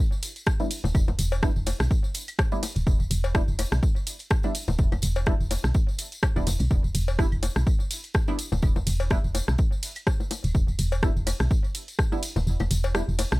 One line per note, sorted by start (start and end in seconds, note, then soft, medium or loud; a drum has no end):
0.12 tambourine soft
0.23 open hi-hat medium
0.23 ride medium
0.23 tambourine medium
0.36 open hi-hat soft
0.36 tambourine soft
0.46 kick loud
0.46 cross-stick loud
0.46 tambourine medium
0.60 0.70 G3 medium
0.60 0.70 B3 medium
0.60 0.70 D4 medium
0.60 0.70 E4 loud
0.60 tambourine soft
0.60 low bongo medium
0.71 open hi-hat loud
0.71 ride medium
0.71 tambourine medium
0.84 0.92 D1 medium
0.84 tambourine soft
0.84 low bongo medium
0.95 1.04 E1 loud
0.95 kick loud
0.95 tambourine medium
0.95 claves medium
1.08 1.16 E1 medium
1.08 tambourine soft
1.08 low bongo medium
1.19 1.50 E1 loud
1.19 open hi-hat loud
1.19 ride medium
1.19 tambourine medium
1.32 tambourine soft
1.32 cowbell loud
1.43 1.50 G3 medium
1.43 1.50 B3 medium
1.43 1.50 D4 medium
1.43 1.50 E4 medium
1.43 kick loud
1.43 cross-stick loud
1.43 tambourine medium
1.56 1.73 E1 medium
1.56 tambourine soft
1.66 open hi-hat loud
1.66 ride medium
1.66 tambourine medium
1.66 cowbell medium
1.66 low bongo medium
1.80 1.88 B1 medium
1.80 cross-stick medium
1.80 tambourine soft
1.91 kick loud
1.91 tambourine medium
2.04 tambourine soft
2.14 open hi-hat medium
2.14 ride medium
2.14 tambourine loud
2.28 open hi-hat soft
2.28 tambourine soft
2.28 claves medium
2.39 kick loud
2.39 cross-stick loud
2.39 tambourine medium
2.39 cowbell medium
2.52 2.62 G3 medium
2.52 2.62 B3 medium
2.52 2.62 D4 medium
2.52 2.62 E4 loud
2.52 tambourine soft
2.52 low bongo medium
2.63 open hi-hat loud
2.63 ride medium
2.63 tambourine loud
2.63 low bongo medium
2.76 2.84 D1 medium
2.76 ride soft
2.76 tambourine soft
2.87 2.97 E1 loud
2.87 kick loud
2.87 tambourine medium
3.00 3.08 E1 medium
3.00 tambourine soft
3.11 3.42 E1 loud
3.11 open hi-hat loud
3.11 ride medium
3.11 tambourine loud
3.24 tambourine soft
3.24 cowbell loud
3.35 3.42 G3 medium
3.35 3.42 B3 medium
3.35 3.42 D4 medium
3.35 3.42 E4 loud
3.35 kick loud
3.35 cross-stick medium
3.35 tambourine medium
3.48 3.65 E1 medium
3.48 tambourine soft
3.59 open hi-hat loud
3.59 ride medium
3.59 tambourine medium
3.59 cowbell medium
3.59 low bongo medium
3.59 claves medium
3.72 3.80 B1 medium
3.72 cross-stick medium
3.72 tambourine soft
3.83 kick loud
3.83 tambourine medium
3.96 tambourine soft
4.07 open hi-hat loud
4.07 ride medium
4.07 tambourine loud
4.19 open hi-hat soft
4.19 tambourine soft
4.30 kick loud
4.30 cross-stick loud
4.30 tambourine medium
4.43 4.54 G3 medium
4.43 4.54 B3 medium
4.43 4.54 D4 medium
4.43 4.54 E4 medium
4.43 tambourine soft
4.43 low bongo medium
4.55 open hi-hat loud
4.55 ride medium
4.55 tambourine loud
4.68 4.76 D1 medium
4.68 tambourine soft
4.68 low bongo medium
4.78 4.89 E1 loud
4.78 kick loud
4.78 tambourine medium
4.92 5.00 E1 medium
4.92 tambourine soft
4.92 low bongo medium
4.92 claves medium
5.02 5.34 E1 loud
5.02 open hi-hat loud
5.02 ride medium
5.02 tambourine loud
5.16 tambourine soft
5.16 cowbell medium
5.26 5.34 G3 medium
5.26 5.34 B3 medium
5.26 5.34 D4 medium
5.26 5.34 E4 loud
5.26 kick loud
5.26 cross-stick medium
5.26 tambourine medium
5.40 5.57 E1 medium
5.40 tambourine soft
5.51 open hi-hat loud
5.51 ride medium
5.51 tambourine medium
5.51 cowbell medium
5.51 low bongo medium
5.64 5.72 B1 medium
5.64 cross-stick medium
5.64 tambourine soft
5.74 kick loud
5.74 tambourine medium
5.88 tambourine soft
5.98 open hi-hat medium
5.98 ride medium
5.98 tambourine loud
6.12 open hi-hat soft
6.12 tambourine soft
6.23 kick loud
6.23 cross-stick medium
6.23 tambourine medium
6.23 cowbell medium
6.23 claves medium
6.36 6.44 D1 loud
6.36 6.46 G3 medium
6.36 6.46 B3 medium
6.36 6.46 D4 medium
6.36 6.46 E4 loud
6.36 tambourine soft
6.36 low bongo medium
6.47 6.57 E1 loud
6.47 open hi-hat loud
6.47 ride medium
6.47 tambourine loud
6.47 low bongo medium
6.60 6.68 B1 loud
6.60 ride soft
6.60 tambourine soft
6.71 6.81 E1 loud
6.71 kick loud
6.71 tambourine soft
6.84 6.92 E1 medium
6.84 tambourine soft
6.95 7.26 E1 loud
6.95 open hi-hat loud
6.95 ride medium
6.95 tambourine medium
7.08 tambourine soft
7.08 cowbell medium
7.19 7.26 G3 medium
7.19 7.26 B3 medium
7.19 7.26 D4 medium
7.19 7.26 E4 loud
7.19 kick loud
7.19 cross-stick medium
7.19 tambourine soft
7.32 7.49 E1 medium
7.32 tambourine soft
7.32 claves medium
7.43 open hi-hat medium
7.43 ride medium
7.43 tambourine medium
7.43 cowbell medium
7.43 low bongo medium
7.56 7.64 B1 medium
7.56 cross-stick medium
7.56 tambourine soft
7.67 kick loud
7.67 tambourine medium
7.80 tambourine soft
7.91 open hi-hat medium
7.91 ride medium
7.91 tambourine loud
8.04 open hi-hat soft
8.04 tambourine soft
8.14 kick loud
8.14 cross-stick medium
8.14 tambourine soft
8.28 8.38 G3 medium
8.28 8.38 B3 medium
8.28 8.38 D4 medium
8.28 8.38 E4 loud
8.28 tambourine soft
8.28 low bongo medium
8.39 open hi-hat medium
8.39 ride medium
8.39 tambourine loud
8.52 8.60 D1 medium
8.52 tambourine soft
8.52 low bongo medium
8.62 8.73 E1 loud
8.62 kick loud
8.62 tambourine medium
8.62 claves medium
8.76 8.84 E1 medium
8.76 tambourine soft
8.76 low bongo medium
8.87 9.18 E1 loud
8.87 open hi-hat medium
8.87 ride medium
8.87 tambourine medium
9.00 tambourine soft
9.00 cowbell medium
9.10 9.18 G3 medium
9.10 9.18 B3 medium
9.10 9.18 D4 medium
9.10 9.18 E4 loud
9.10 kick loud
9.10 cross-stick medium
9.10 tambourine medium
9.24 9.41 E1 medium
9.24 tambourine soft
9.35 open hi-hat medium
9.35 ride medium
9.35 tambourine loud
9.35 cowbell medium
9.35 low bongo medium
9.48 9.56 B1 medium
9.48 cross-stick medium
9.48 tambourine soft
9.58 kick loud
9.58 tambourine medium
9.72 tambourine soft
9.83 open hi-hat medium
9.83 ride medium
9.83 tambourine medium
9.96 open hi-hat soft
9.96 tambourine soft
9.96 claves medium
10.07 kick loud
10.07 cross-stick medium
10.07 tambourine soft
10.07 cowbell medium
10.20 tambourine soft
10.20 low bongo medium
10.31 open hi-hat medium
10.31 ride medium
10.31 tambourine medium
10.31 low bongo medium
10.44 10.52 D1 medium
10.44 ride soft
10.44 tambourine soft
10.55 10.65 E1 loud
10.55 kick loud
10.55 tambourine soft
10.68 10.76 E1 medium
10.68 tambourine soft
10.79 11.10 E1 loud
10.79 open hi-hat medium
10.79 ride medium
10.79 tambourine medium
10.92 tambourine soft
10.92 cowbell medium
11.03 11.10 G3 medium
11.03 11.10 B3 medium
11.03 11.10 D4 medium
11.03 11.10 E4 loud
11.03 kick loud
11.03 cross-stick medium
11.03 tambourine medium
11.16 11.33 E1 medium
11.16 tambourine soft
11.27 open hi-hat medium
11.27 ride medium
11.27 tambourine medium
11.27 cowbell medium
11.27 low bongo medium
11.27 claves medium
11.40 11.48 B1 loud
11.40 cross-stick medium
11.40 tambourine soft
11.51 kick loud
11.51 tambourine soft
11.64 tambourine soft
11.75 open hi-hat medium
11.75 ride medium
11.75 tambourine loud
11.88 open hi-hat soft
11.88 tambourine soft
11.99 kick loud
11.99 cross-stick medium
11.99 tambourine soft
12.12 12.22 G3 medium
12.12 12.22 B3 medium
12.12 12.22 D4 medium
12.12 12.22 E4 loud
12.12 tambourine soft
12.12 low bongo soft
12.23 open hi-hat medium
12.23 ride medium
12.23 tambourine medium
12.36 12.44 D1 medium
12.36 tambourine soft
12.36 low bongo medium
12.47 12.57 E1 loud
12.47 tambourine soft
12.60 12.68 E1 medium
12.60 tambourine soft
12.60 low bongo medium
12.60 claves medium
12.71 13.02 E1 loud
12.71 open hi-hat medium
12.71 ride medium
12.71 tambourine medium
12.84 tambourine soft
12.84 cowbell loud
12.95 13.02 G3 medium
12.95 13.02 B3 medium
12.95 13.02 D4 medium
12.95 13.02 E4 medium
12.95 cross-stick medium
12.95 tambourine medium
13.08 13.25 E1 medium
13.08 tambourine soft
13.19 open hi-hat medium
13.19 ride medium
13.19 tambourine medium
13.19 cowbell medium
13.19 low bongo medium
13.32 13.40 B1 medium
13.32 cross-stick medium
13.32 tambourine soft